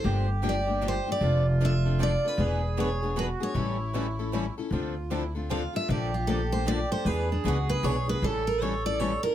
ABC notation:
X:1
M:3/4
L:1/16
Q:"Swing" 1/4=154
K:Dm
V:1 name="Steel-string acoustic guitar"
c2 z2 d4 c2 d2- | d2 z2 e4 d2 =B2- | =B4 ^c4 B2 c2- | ^c8- c2 z2 |
z8 f2 e2 | d2 F2 A2 c2 d2 c2 | =B2 D2 ^F2 B2 ^c2 B2 | A2 B2 ^c2 d2 c2 B2 |]
V:2 name="Accordion"
G12 | F12 | ^G8 ^F4 | E8- E2 z2 |
F4 E2 F6 | G12 | ^G12 | A8- A2 z2 |]
V:3 name="Steel-string acoustic guitar"
[D,F,B,DG]2 z2 [D,F,B,DG] z [B,DG]2 [D,F,B,DG] z [B,DG]2 | [F,CDA]2 z2 [F,CDA] z [CDA]2 [F,CDA] z [CDA]2 | [E,=B,D^G]2 z2 [E,B,DG] z [B,DG]2 [E,B,DG] z [B,DG]2 | [E,G,^CEA]2 z2 [E,G,CEA] z [CEA]2 [E,G,CEA] z [CEA]2 |
[D,F,CDA]2 z2 [D,F,CDA] z [CDA]2 [D,F,CDA] z [CDA]2 | [D,F,B,DA]2 z2 [D,F,B,DA] z [B,DA]2 [D,F,B,DA] z [B,DA]2 | [E,=B,D^G]2 z2 [E,B,DG] z [B,DG]2 [E,B,DG] z [B,DG]2 | [E,G,^CEA]2 z2 [E,G,CEA] z [CEA]2 [E,G,CEA] z [CEA]2 |]
V:4 name="Steel-string acoustic guitar"
[D,F,B,DG]2 z2 [D,F,B,DG] z3 [D,F,B,DG] z3 | [F,CDA]2 z2 [F,CDA] z3 [F,CDA] z3 | [E,=B,D^G=B]2 z2 [E,B,DGB] z3 [E,B,DGB] z3 | [E,G,^CEA]2 z2 [E,G,CEA] z3 [E,G,CEA] z3 |
[D,F,CDA]2 z2 [D,F,CDA] z3 [D,F,CDA] z3 | [D,F,B,DA]2 z2 [D,F,B,DA] z3 [D,F,B,DA] z3 | [E,=B,D^G=B]2 z2 [E,B,DGB] z3 [E,B,DGB] z3 | [E,G,^CEA]2 z2 [E,G,CEA] z3 [E,G,CEA] z3 |]
V:5 name="Upright bass" clef=bass
G,,,12 | F,,,12 | E,,,12 | A,,,12 |
D,,12 | B,,,12 | E,,4 ^C,,4 =B,,,4 | A,,,12 |]